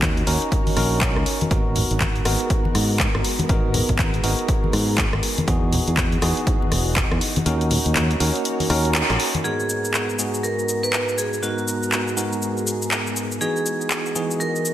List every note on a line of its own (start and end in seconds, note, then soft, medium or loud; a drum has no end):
0.00 0.21 D#2 medium
0.00 1.49 A#3 medium
0.00 0.25 C#4 medium
0.00 0.25 D#4 medium
0.00 1.49 D#4 medium
0.00 0.25 F#4 medium
0.00 1.49 F#4 medium
0.00 0.25 A#4 medium
0.00 1.49 C#5 medium
0.00 kick loud
0.00 clap loud
0.00 closed hi-hat medium
0.00 high conga loud
0.17 closed hi-hat soft
0.27 0.37 D#2 medium
0.27 0.75 C#4 medium
0.27 0.75 D#4 medium
0.27 0.75 F#4 medium
0.27 0.75 A#4 medium
0.27 open hi-hat loud
0.42 closed hi-hat soft
0.52 kick loud
0.52 closed hi-hat medium
0.67 open hi-hat medium
0.67 high conga medium
0.77 1.16 A#1 medium
0.77 1.49 C#4 medium
0.77 1.49 D#4 medium
0.77 1.49 F#4 medium
0.77 1.49 A#4 medium
0.77 cross-stick medium
0.77 open hi-hat loud
1.01 kick loud
1.01 clap loud
1.01 closed hi-hat medium
1.16 1.23 C#2 medium
1.16 cross-stick medium
1.26 open hi-hat loud
1.41 closed hi-hat soft
1.41 high conga medium
1.51 1.82 G#1 loud
1.51 5.44 G#3 medium
1.51 5.44 B3 medium
1.51 2.23 B3 medium
1.51 2.23 D#4 medium
1.51 2.23 F#4 medium
1.51 3.47 F#4 medium
1.51 5.44 A#4 medium
1.51 2.23 A#4 medium
1.51 kick loud
1.51 closed hi-hat medium
1.76 open hi-hat loud
1.76 low conga medium
1.91 2.20 G#1 medium
1.91 closed hi-hat soft
2.00 kick loud
2.00 clap loud
2.00 closed hi-hat medium
2.00 high conga medium
2.16 closed hi-hat soft
2.25 2.35 G#1 medium
2.25 3.47 B3 medium
2.25 3.47 D#4 medium
2.25 3.47 F#4 medium
2.25 3.47 A#4 medium
2.25 cross-stick medium
2.25 open hi-hat loud
2.40 closed hi-hat soft
2.50 kick loud
2.50 closed hi-hat medium
2.65 high conga medium
2.75 3.06 G#2 medium
2.75 cross-stick medium
2.75 open hi-hat loud
3.00 kick loud
3.00 clap loud
3.00 closed hi-hat medium
3.15 3.21 G#1 medium
3.15 cross-stick medium
3.25 open hi-hat loud
3.39 closed hi-hat soft
3.39 high conga medium
3.49 3.80 G#1 loud
3.49 4.21 B3 medium
3.49 4.21 D#4 medium
3.49 4.21 F#4 medium
3.49 7.42 G#4 medium
3.49 4.21 A#4 medium
3.49 kick loud
3.49 closed hi-hat medium
3.74 open hi-hat loud
3.74 low conga medium
3.89 4.18 G#1 medium
3.89 kick medium
3.89 closed hi-hat soft
3.98 kick loud
3.98 clap loud
3.98 closed hi-hat medium
3.98 high conga medium
4.14 closed hi-hat soft
4.24 4.33 G#1 medium
4.24 5.45 B3 medium
4.24 5.45 D#4 medium
4.24 5.45 F#4 medium
4.24 5.45 A#4 medium
4.24 open hi-hat loud
4.39 closed hi-hat soft
4.48 kick loud
4.48 closed hi-hat medium
4.64 high conga medium
4.73 5.04 G#2 medium
4.73 cross-stick medium
4.73 open hi-hat medium
4.98 kick loud
4.98 clap loud
4.98 closed hi-hat medium
5.13 5.19 G#1 medium
5.13 cross-stick medium
5.23 open hi-hat medium
5.38 closed hi-hat medium
5.38 high conga medium
5.48 5.79 E2 loud
5.48 7.44 E3 medium
5.48 6.20 B3 medium
5.48 6.20 D#4 medium
5.48 9.40 D#4 medium
5.48 6.20 F#4 medium
5.48 7.44 F#4 medium
5.48 6.20 G#4 medium
5.48 kick loud
5.48 closed hi-hat medium
5.73 open hi-hat loud
5.73 low conga medium
5.87 6.16 E2 medium
5.87 closed hi-hat medium
5.97 kick loud
5.97 clap loud
5.97 closed hi-hat medium
5.97 high conga medium
6.12 closed hi-hat soft
6.22 6.32 E2 medium
6.22 7.44 B3 medium
6.22 7.44 D#4 medium
6.22 7.44 F#4 medium
6.22 7.44 G#4 medium
6.22 cross-stick medium
6.22 open hi-hat loud
6.37 closed hi-hat soft
6.47 kick loud
6.47 closed hi-hat medium
6.62 high conga medium
6.72 7.03 E1 medium
6.72 cross-stick medium
6.72 open hi-hat medium
6.96 kick loud
6.96 clap loud
6.96 closed hi-hat medium
7.11 7.18 E2 loud
7.11 cross-stick medium
7.21 open hi-hat loud
7.36 closed hi-hat medium
7.36 high conga loud
7.46 7.77 D#2 loud
7.46 9.42 A#3 medium
7.46 8.18 C#4 medium
7.46 8.18 D#4 medium
7.46 9.42 F#4 medium
7.46 8.18 F#4 medium
7.46 8.18 A#4 medium
7.46 9.42 C#5 medium
7.46 closed hi-hat medium
7.61 closed hi-hat soft
7.71 open hi-hat loud
7.71 low conga medium
7.86 8.15 D#2 medium
7.86 closed hi-hat medium
7.95 clap loud
7.95 closed hi-hat medium
7.95 high conga medium
8.11 closed hi-hat soft
8.20 8.30 D#2 medium
8.20 8.68 C#4 medium
8.20 8.68 D#4 medium
8.20 8.68 F#4 medium
8.20 8.68 A#4 medium
8.20 open hi-hat loud
8.35 closed hi-hat soft
8.45 closed hi-hat medium
8.60 open hi-hat medium
8.60 high conga medium
8.70 9.01 D#2 loud
8.70 9.42 C#4 medium
8.70 9.42 D#4 medium
8.70 9.42 F#4 medium
8.70 9.42 A#4 medium
8.70 cross-stick medium
8.70 open hi-hat loud
8.85 closed hi-hat soft
8.95 clap loud
8.95 closed hi-hat medium
9.10 9.16 A#1 medium
9.10 cross-stick medium
9.10 closed hi-hat soft
9.20 open hi-hat loud
9.35 closed hi-hat medium
9.35 high conga medium
9.44 10.16 G#2 medium
9.44 14.74 G#3 medium
9.44 10.16 B3 medium
9.44 13.37 B3 medium
9.44 10.16 D#4 medium
9.44 10.16 F#4 medium
9.44 11.41 F#4 medium
9.44 10.46 G#4 medium
9.44 10.16 A#4 medium
9.44 13.37 A#5 medium
9.44 shaker soft
9.60 shaker soft
9.70 shaker medium
9.85 shaker soft
9.94 clap loud
9.94 shaker soft
10.09 shaker soft
10.19 11.40 G#2 medium
10.19 11.40 B3 medium
10.19 11.40 D#4 medium
10.19 11.40 F#4 medium
10.19 11.40 G#4 medium
10.19 shaker medium
10.34 shaker soft
10.43 10.81 A#4 medium
10.43 shaker soft
10.59 shaker soft
10.69 shaker medium
10.83 11.15 B4 loud
10.83 shaker soft
10.93 clap loud
10.93 shaker soft
11.09 shaker soft
11.18 11.41 G#4 medium
11.18 shaker medium
11.33 shaker soft
11.43 12.15 G#2 medium
11.43 12.15 B3 medium
11.43 12.15 D#4 medium
11.43 12.87 F#4 medium
11.43 12.15 F#4 medium
11.43 13.39 G#4 medium
11.43 12.15 A#4 medium
11.43 shaker soft
11.58 shaker soft
11.68 shaker medium
11.83 shaker soft
11.92 clap loud
11.92 shaker soft
12.08 shaker soft
12.17 13.39 G#2 medium
12.17 13.39 B3 medium
12.17 13.39 D#4 medium
12.17 13.39 F#4 medium
12.17 13.39 A#4 medium
12.17 shaker medium
12.32 shaker soft
12.42 shaker soft
12.57 shaker soft
12.67 shaker medium
12.82 shaker soft
12.91 clap loud
12.91 shaker soft
13.07 shaker soft
13.17 shaker medium
13.32 shaker soft
13.41 14.13 E3 medium
13.41 14.74 E3 medium
13.41 14.13 B3 medium
13.41 14.13 D#4 medium
13.41 14.13 F#4 medium
13.41 14.74 F#4 medium
13.41 14.43 G#4 medium
13.41 14.13 G#4 medium
13.41 14.74 D#5 medium
13.41 shaker soft
13.56 shaker soft
13.66 shaker medium
13.81 shaker soft
13.90 clap loud
13.90 shaker soft
14.06 shaker soft
14.15 14.74 E3 medium
14.15 14.74 B3 medium
14.15 14.74 D#4 medium
14.15 14.74 F#4 medium
14.15 14.74 G#4 medium
14.15 shaker medium
14.31 shaker soft
14.40 14.74 A#4 medium
14.40 shaker soft
14.56 shaker soft
14.65 shaker medium